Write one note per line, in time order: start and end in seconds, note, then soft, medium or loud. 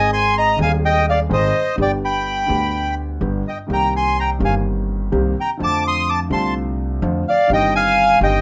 0.00 0.55 G#1 medium
0.00 0.55 G#2 medium
0.00 0.54 D#3 medium
0.00 0.55 G#3 medium
0.00 0.55 C4 medium
0.00 0.56 G#4 medium
0.00 0.11 D#5 medium
0.00 0.11 G#5 medium
0.13 0.35 G#5 medium
0.13 0.36 C6 medium
0.38 0.59 D#5 medium
0.38 0.59 A#5 medium
0.56 1.26 D#1 medium
0.56 1.26 D#2 medium
0.56 1.25 D#3 medium
0.56 1.26 G#3 medium
0.56 1.26 C4 medium
0.60 1.27 G#4 medium
0.60 0.72 F5 medium
0.60 0.72 G#5 medium
0.85 1.06 D#5 medium
0.85 1.06 G5 medium
1.09 1.20 D5 medium
1.09 1.19 F5 medium
1.29 1.50 G#1 medium
1.29 1.50 G#2 medium
1.29 1.50 D#3 medium
1.29 1.50 G#3 medium
1.29 1.50 C4 medium
1.29 1.50 G#4 medium
1.29 1.76 D#5 medium
1.33 1.76 C5 medium
1.76 2.46 G1 medium
1.76 2.46 G2 medium
1.76 2.45 D3 medium
1.76 2.45 G3 medium
1.76 2.46 B3 medium
1.76 2.47 G4 medium
1.82 1.92 D5 medium
1.82 1.92 G5 medium
2.05 2.95 G5 medium
2.05 2.95 B5 medium
2.47 3.17 D2 medium
2.47 3.17 D3 medium
2.47 3.17 G3 medium
2.47 3.18 B3 soft
2.51 3.18 G4 medium
3.21 3.41 G1 medium
3.21 3.41 G2 medium
3.21 3.41 D3 medium
3.21 3.41 G3 medium
3.21 3.41 B3 medium
3.21 3.41 G4 medium
3.48 3.58 D#5 soft
3.48 3.59 G5 medium
3.67 4.37 C2 medium
3.67 4.38 C2 medium
3.67 4.37 C3 medium
3.67 4.36 D#3 medium
3.67 4.37 A#3 soft
3.67 4.37 C4 soft
3.67 4.38 G4 medium
3.73 3.93 G5 medium
3.73 3.94 A#5 medium
3.96 4.17 G#5 medium
3.96 4.19 C6 medium
4.20 4.31 G5 medium
4.20 4.30 A#5 medium
4.39 5.09 G1 medium
4.39 5.09 G2 medium
4.39 5.08 D#3 medium
4.39 5.09 A#3 medium
4.39 5.09 C4 medium
4.39 5.10 G4 medium
4.45 4.55 F5 soft
4.45 4.55 G#5 medium
5.12 5.32 C2 medium
5.12 5.33 C2 medium
5.12 5.32 C3 medium
5.12 5.32 D#3 medium
5.12 5.32 A#3 medium
5.12 5.32 C4 medium
5.12 5.32 G4 medium
5.40 5.50 G5 medium
5.40 5.51 A#5 medium
5.57 6.27 F2 medium
5.57 6.28 F2 medium
5.57 6.26 D3 medium
5.57 6.27 F3 medium
5.57 6.27 A3 medium
5.57 6.28 C4 medium
5.57 6.28 F4 medium
5.63 5.84 A5 medium
5.63 5.87 D6 medium
5.87 6.08 C6 medium
5.87 6.10 D#6 medium
6.09 6.20 A5 medium
6.09 6.19 D6 medium
6.29 6.99 C2 medium
6.29 6.99 C3 medium
6.29 6.98 D3 medium
6.29 6.98 A3 medium
6.29 6.99 C4 medium
6.29 6.54 C6 medium
6.33 7.00 F4 medium
6.33 6.55 A5 medium
7.02 7.22 F2 medium
7.02 7.22 D3 medium
7.02 7.22 F3 medium
7.02 7.22 A3 medium
7.02 7.22 C4 medium
7.02 7.23 F4 medium
7.28 7.50 D5 medium
7.28 7.52 F5 medium
7.48 8.18 G1 medium
7.48 8.18 G2 medium
7.48 8.17 D#3 medium
7.48 8.17 G3 medium
7.48 8.18 C4 medium
7.52 8.19 D#4 medium
7.52 7.74 D#5 medium
7.52 7.74 G5 medium
7.75 8.20 F5 medium
7.75 8.19 G#5 medium
8.21 8.41 G1 medium
8.21 8.41 G2 medium
8.21 8.41 D#3 medium
8.21 8.41 G3 medium
8.21 8.41 C4 medium
8.21 8.41 G4 medium
8.21 8.41 D#5 medium
8.21 8.41 G5 medium